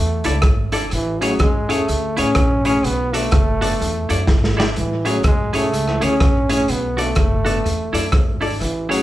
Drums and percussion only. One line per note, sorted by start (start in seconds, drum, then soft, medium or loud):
0.24 closed hi-hat medium
0.42 kick loud
0.42 cross-stick loud
0.42 closed hi-hat medium
0.72 closed hi-hat medium
0.91 closed hi-hat medium
1.22 closed hi-hat medium
1.39 kick medium
1.39 cross-stick loud
1.39 closed hi-hat medium
1.70 closed hi-hat medium
1.88 closed hi-hat medium
2.17 closed hi-hat medium
2.35 kick loud
2.35 cross-stick loud
2.35 closed hi-hat medium
2.65 closed hi-hat medium
2.84 closed hi-hat medium
3.14 closed hi-hat medium
3.31 kick loud
3.31 cross-stick loud
3.31 closed hi-hat medium
3.62 closed hi-hat medium
3.81 closed hi-hat medium
4.10 closed hi-hat medium
4.27 kick loud
4.27 snare medium
4.44 snare medium
4.60 snare loud
4.76 closed hi-hat medium
5.05 closed hi-hat medium
5.23 kick loud
5.23 cross-stick medium
5.23 closed hi-hat medium
5.54 closed hi-hat medium
5.73 closed hi-hat medium
5.88 cross-stick medium
6.02 cross-stick medium
6.02 closed hi-hat medium
6.20 kick loud
6.20 cross-stick loud
6.20 closed hi-hat medium
6.50 closed hi-hat medium
6.68 closed hi-hat medium
6.98 closed hi-hat medium
7.15 kick loud
7.15 cross-stick medium
7.15 closed hi-hat medium
7.46 closed hi-hat medium
7.66 closed hi-hat medium
7.94 closed hi-hat medium
8.12 kick loud
8.12 cross-stick loud
8.12 closed hi-hat medium
8.41 open hi-hat medium
8.61 closed hi-hat medium
8.91 closed hi-hat medium